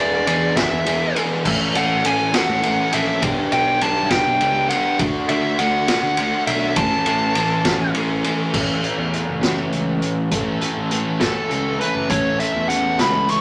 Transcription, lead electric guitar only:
Already playing: D5
0.28 D5
0.57 E5
1.77 F#5
2.06 G#5
2.35 F#5
2.94 E5
3.53 G5
3.83 A5
4.10 G5
4.69 F#5
5.29 E5
5.58 F#5
6.47 E5
6.76 A5
11.21 A4
11.81 B4
12.10 C#5
12.40 E5
12.68 F#5
13.01 B5
13.30 C#6

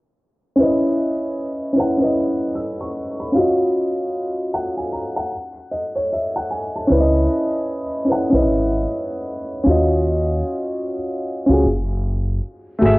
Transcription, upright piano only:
0.56 C#4 E4
0.60 B4 D#5
1.73 C#4 E4
1.77 B4 F#5
1.97 C#4 E4
2.02 B4 D#5
2.55 E6
2.81 C#6
3.20 B5
3.32 C#4 F4
3.37 F#4 D#5
4.54 F#5
4.77 G#5
4.92 A#5
5.16 F#5
5.71 D#5
5.96 C#5
6.13 E5
6.36 F#5
6.50 G#5
6.76 A5
6.87 C#4 E4
6.92 B4 D5
7.00 D#5
8.05 C#4 E4
8.09 B4 F#5
8.30 C#4 E4
8.34 B4 D#5
9.64 C#4 F4
9.68 F#4 D#5
11.46 C#4 F4
11.51 F#4 G#4
12.79 A3 F#4
12.83 G#4 E5

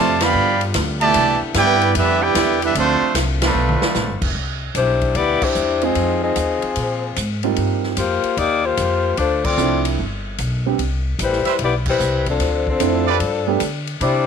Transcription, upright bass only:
Already playing: F2
0.34 G2
0.74 D2
1.15 C2
1.41 muted upright bass stroke
1.54 G2
1.95 F2
2.35 E2
2.75 D2
3.02 muted upright bass stroke
3.14 C2
3.55 B1
3.82 muted upright bass stroke
3.95 A1
4.08 G1
4.22 F1
4.34 C2
4.75 B1
5.15 D2
5.42 muted upright bass stroke
5.55 E2
5.95 F2
6.36 D#2
6.63 muted upright bass stroke
6.76 A#2
7.17 G#2
7.57 G2
7.97 F2
8.23 muted upright bass stroke
8.37 D#2
8.77 F2
9.18 D2
9.58 C2
9.98 G1
10.38 B1
10.79 C2
11.19 A1
11.45 muted upright bass stroke
11.59 B1
12.00 C2
12.39 D2
12.80 F2
13.20 G2
13.61 D3
14.01 C3

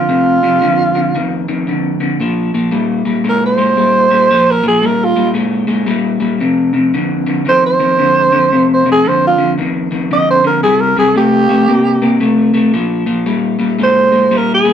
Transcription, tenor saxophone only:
Already playing: F4
3.29 A#4
3.46 C5
4.51 A#4
4.68 G#4
4.86 A#4
5.04 F4
7.49 C5
7.66 C5
8.74 C5
8.91 G#4
9.08 C5
9.27 F4
10.13 D#5
10.30 C5
10.46 A#4
10.63 G#4
10.81 A#4
10.99 G#4
11.17 G4
13.83 C5
14.37 A#4
14.54 G#4

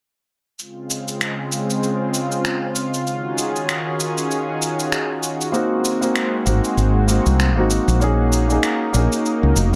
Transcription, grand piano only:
5.52 A#3 C4 D#4 F#4
6.01 A#3 C4 D#4 F#4
6.46 A#3 C4 D#4 F#4
7.07 A#3 C4 D#4 F#4
7.56 A#3 C4 D#4 F#4
8.00 A#3 C#4 D#4 G#4
8.48 A#3 C#4 D#4 G#4
8.93 A#3 C#4 D#4 G#4

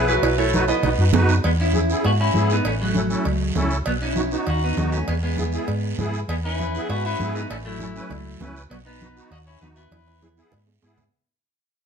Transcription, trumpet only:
0.07 F#3
0.37 A3
0.68 B3
6.29 G#4
6.45 B4
6.91 B4
7.06 B4
7.35 B4
7.50 A4
7.66 E4
8.71 F#4
8.87 B4
9.32 D#5
9.46 C#5
9.61 B4
9.76 B4

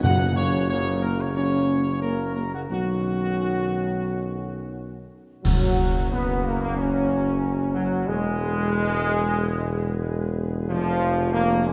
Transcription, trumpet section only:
0.04 F#5
0.36 C#5
0.69 C#5
1.02 A#4
1.20 C#5
1.36 C#5
2.02 A#4
2.36 A#4
2.54 F#4
2.71 F#4
5.45 F#4 A#4
8.08 G#4 B4
10.69 C#5

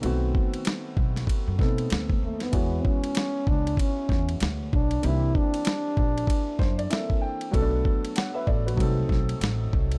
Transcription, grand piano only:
0.01 D#3 A3 B3 C4 F#4
1.58 A3 B3 C4 D#4 A4
2.51 E3 G#3 B3 F#4 C#5
5.02 D#3 A#3 C4 D4 G4
5.08 E3
6.59 C5
6.78 D5
6.89 E3 A#3 C4 D4 A4 E5
7.21 G5
7.51 F#3 A3 B3 C#4 A4
7.60 D4
8.16 C#5 F#5
8.34 B4 E5
8.46 A4 D5
8.66 F#4 B4
8.76 F#3 A3 C4 D#4 A4

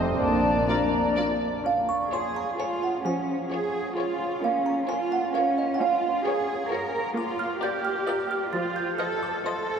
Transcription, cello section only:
Already playing: F2
0.19 A#2
2.12 G#4
2.59 F4
3.06 C#4
3.52 G#4
3.97 F4
4.44 C#4
4.89 F4
5.35 C#4
5.80 F4
6.26 G#4
6.71 A#4
7.16 F4
7.62 G4
8.53 F4
8.99 A4
9.46 A4

